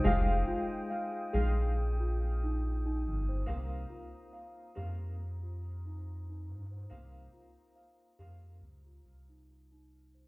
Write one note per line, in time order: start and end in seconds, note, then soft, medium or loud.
0.00 3.43 G#3 medium
0.00 2.43 D#4 medium
0.00 0.47 F4 medium
0.00 0.45 C5 medium
0.00 3.43 G5 medium
0.00 10.28 D#6 medium
0.04 0.43 F1 loud
0.04 1.28 G#3 medium
0.04 1.29 D#4 medium
0.04 1.29 F4 medium
0.04 1.30 G4 medium
0.47 0.71 F4 medium
0.90 1.04 F5 medium
1.33 3.07 A#1 medium
1.33 1.71 G#3 medium
1.33 1.71 D#4 medium
1.33 1.71 F4 medium
1.33 1.47 G#4 loud
1.33 1.71 G5 medium
2.00 2.11 F4 medium
2.43 2.54 D#4 medium
2.86 3.26 D#4 medium
3.05 3.43 G1 medium
3.29 3.47 C5 medium
3.46 3.86 C2 loud
3.46 4.71 A#3 medium
3.46 4.72 C4 medium
3.46 4.72 D#4 medium
3.46 4.72 G4 medium
3.46 10.28 C5 medium
3.46 10.28 A#5 medium
3.90 4.13 F4 medium
4.33 4.47 F5 medium
4.75 6.49 F2 medium
4.75 5.13 A#3 medium
4.75 5.13 C4 medium
4.75 5.13 D#4 medium
4.75 5.14 F4 medium
4.75 4.90 G4 medium
5.43 5.54 F4 medium
5.86 5.96 D#4 medium
6.29 6.69 D#4 medium
6.48 6.86 G2 medium
6.72 7.31 C5 medium
6.90 7.29 C2 medium
6.90 8.14 A#3 medium
6.90 8.15 C4 medium
6.90 8.15 D#4 medium
6.90 8.15 G4 medium
7.33 7.56 F4 medium
7.76 7.90 F5 medium
8.19 8.61 F2 medium
8.19 8.56 A#3 medium
8.19 8.56 C4 medium
8.19 8.57 D#4 medium
8.19 8.57 F4 medium
8.19 8.33 G4 medium
8.62 9.00 C#2 medium
8.86 8.97 F4 medium
9.05 10.28 C2 medium
9.29 9.39 D#4 medium
9.72 10.12 D#4 medium
10.14 10.28 C5 medium